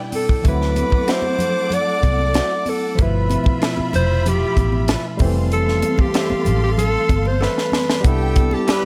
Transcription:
Already playing: tine electric piano B2 G3 D4 E4, string section E4 D5 G5
0.12 alto saxophone A4, open hi-hat, muted conga, high conga
0.29 kick
0.41 fingered electric bass D2, tine electric piano F3 A3, string section A4 F#5 D6, kick, closed hi-hat, muted conga
0.46 tine electric piano F#3 C4 E4, alto saxophone B4
0.62 snare
0.76 closed hi-hat, muted conga, high conga
0.90 muted fingered electric bass stroke, kick, high conga
1.08 clean electric guitar F#4 C5 E5, alto saxophone C5, snare, closed hi-hat, muted conga
1.22 high conga
1.39 closed hi-hat, muted conga, low conga
1.70 alto saxophone D5, closed hi-hat, low conga
2.03 fingered electric bass C2, kick, closed hi-hat, high conga
2.19 high conga
2.34 clean electric guitar F#4 C5 E5, snare, closed hi-hat, muted conga
2.66 alto saxophone A4, open hi-hat, high conga
2.95 fingered electric bass G1, tine electric piano F3 A3, string section F4 E5 B5, kick, closed hi-hat
3.00 tine electric piano B2 E4, alto saxophone B4
3.29 closed hi-hat, muted conga, high conga
3.44 muted fingered electric bass stroke, kick, high conga
3.62 clean electric guitar F4 B4 E5, snare, closed hi-hat
3.77 muted fingered electric bass stroke, high conga
3.93 fingered electric bass F1, alto saxophone C5, closed hi-hat, muted conga, low conga
4.26 alto saxophone G4, closed hi-hat, muted conga, low conga
4.57 fingered electric bass A1, kick, closed hi-hat, muted conga, high conga
4.72 high conga
4.88 clean electric guitar F4 B4 E5, snare, closed hi-hat, muted conga
5.17 fingered electric bass F1, tine electric piano G3 A3, string section A4 F5 C6, kick, open hi-hat, high conga
5.22 tine electric piano E3 C4
5.52 alto saxophone A4, closed hi-hat
5.68 snare
5.82 closed hi-hat, muted conga, high conga
5.98 alto saxophone G4, muted fingered electric bass stroke, kick, high conga
6.14 clean electric guitar A4 C5 E5, snare, closed hi-hat
6.30 muted fingered electric bass stroke, high conga
6.45 fingered electric bass A1, closed hi-hat, low conga
6.63 alto saxophone G4
6.77 alto saxophone A4, closed hi-hat, low conga
7.09 fingered electric bass G1, kick, closed hi-hat, muted conga, high conga
7.25 alto saxophone C5, high conga
7.41 clean electric guitar A4 C5 E5, alto saxophone B4, snare, muted conga
7.58 snare
7.72 snare, muted conga, high conga
7.90 snare
8.01 fingered electric bass C2, tine electric piano G3 B3, string section G4 G5, kick, closed hi-hat
8.05 tine electric piano D4 E4, alto saxophone A4
8.36 kick, closed hi-hat, high conga
8.51 alto saxophone G4, string section A4 A5, high conga
8.67 clean electric guitar E4 B4 D5, string section B4 B5, snare, closed hi-hat, muted conga

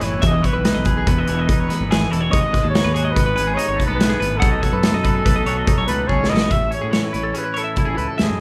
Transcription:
Already playing: clean electric guitar A2 C#4 E4 F#4
0.01 fingered electric bass F#1, clean electric guitar E3 B4, trumpet C#5, snare, closed hi-hat
0.20 fingered electric bass E1, clean electric guitar E2 E5, kick, closed hi-hat
0.26 trumpet D#5
0.33 clean electric guitar D#5
0.42 clean electric guitar E3 C#5, trumpet B4, kick, closed hi-hat
0.53 fingered electric bass B1, clean electric guitar B4
0.65 clean electric guitar D#4, snare, closed hi-hat
0.74 fingered electric bass B1, clean electric guitar D#5
0.85 clean electric guitar G#4 B4, kick, closed hi-hat
0.97 clean electric guitar G#4
1.07 fingered electric bass E1, clean electric guitar B3 B4, trumpet B4, kick, closed hi-hat
1.18 clean electric guitar D#5
1.26 fingered electric bass E1, clean electric guitar E3 C#5, closed hi-hat
1.39 clean electric guitar D#5
1.47 clean electric guitar D#4, trumpet B4, kick, closed hi-hat
1.59 fingered electric bass E1, clean electric guitar C#5
1.68 clean electric guitar B3 B4, snare, closed hi-hat
1.81 fingered electric bass G#1
1.89 clean electric guitar E2 G#4, snare, closed hi-hat
2.11 fingered electric bass E1, clean electric guitar E3 A4, closed hi-hat
2.21 clean electric guitar C#5
2.31 fingered electric bass G#1, clean electric guitar G#2 C#5, trumpet D#5, kick, closed hi-hat
2.41 clean electric guitar D#5
2.53 clean electric guitar G#3 B4, kick, snare, closed hi-hat
2.62 fingered electric bass D#2, clean electric guitar A4
2.70 trumpet C#5
2.74 clean electric guitar D#4 F#4, snare, closed hi-hat
2.84 fingered electric bass D#2, clean electric guitar B4
2.94 clean electric guitar F#4 G#4, closed hi-hat
3.05 clean electric guitar D#5
3.11 trumpet B4
3.16 fingered electric bass G#1, clean electric guitar B3, kick, closed hi-hat
3.26 clean electric guitar B4
3.36 fingered electric bass G#1, clean electric guitar G#3 B4, closed hi-hat
3.47 clean electric guitar G#4
3.54 clean electric guitar D#4 D#5, trumpet C#5
3.59 closed hi-hat
3.68 fingered electric bass G#1, clean electric guitar C#5
3.76 clean electric guitar A3 B4, kick
3.81 closed hi-hat
3.85 clean electric guitar B3, trumpet B4
3.90 fingered electric bass B1, clean electric guitar A4
3.95 clean electric guitar G#2, trumpet B4
4.00 snare, closed hi-hat
4.09 clean electric guitar G#4
4.19 fingered electric bass G#1, clean electric guitar A2 B4, closed hi-hat
4.37 clean electric guitar B2 F#3 A3 D#4 F#5, trumpet A4
4.42 fingered electric bass B1, kick, closed hi-hat
4.52 clean electric guitar D#5
4.60 clean electric guitar F#3 C#5, kick, closed hi-hat
4.73 fingered electric bass F#2, clean electric guitar B4
4.83 clean electric guitar D#4, snare, closed hi-hat
4.93 fingered electric bass F#2, clean electric guitar D#5
5.03 clean electric guitar D#4 B4, kick, closed hi-hat
5.15 clean electric guitar G#4
5.25 fingered electric bass B1, clean electric guitar A3 B4, kick, closed hi-hat
5.36 clean electric guitar D#5
5.45 fingered electric bass B1, clean electric guitar F#3 C#5, closed hi-hat
5.57 clean electric guitar D#5
5.67 clean electric guitar D#4, kick, closed hi-hat
5.78 fingered electric bass B1, clean electric guitar C#5
5.87 fingered electric bass C#2, clean electric guitar A3 B4, trumpet B4, closed hi-hat
6.08 fingered electric bass B1, clean electric guitar C#3 G#4, trumpet C#5, kick
6.24 snare
6.29 fingered electric bass A1, clean electric guitar B2 A4, trumpet D#5
6.37 snare
6.41 clean electric guitar C#5
6.49 fingered electric bass A1, clean electric guitar A2 E5, trumpet E5, kick, closed hi-hat
6.71 clean electric guitar C#4 C#5, trumpet C#5, closed hi-hat
6.82 fingered electric bass A2, clean electric guitar G#4
6.91 clean electric guitar E3 C#5, snare, closed hi-hat
7.04 clean electric guitar B4
7.13 fingered electric bass A1, clean electric guitar E4, trumpet C#5, closed hi-hat
7.24 clean electric guitar A4
7.34 clean electric guitar C#4 G#4, trumpet B4, closed hi-hat
7.44 clean electric guitar B4
7.54 clean electric guitar E4 C#5, closed hi-hat
7.58 trumpet A4
7.64 clean electric guitar E5
7.76 fingered electric bass A1, clean electric guitar E4, kick, closed hi-hat
7.85 fingered electric bass A1, clean electric guitar G#4
7.97 fingered electric bass C#2, clean electric guitar E4 B4, closed hi-hat
8.08 clean electric guitar A4
8.18 fingered electric bass E2, clean electric guitar A2 E5, trumpet G#4, snare, closed hi-hat
8.28 fingered electric bass F#2, clean electric guitar D#5

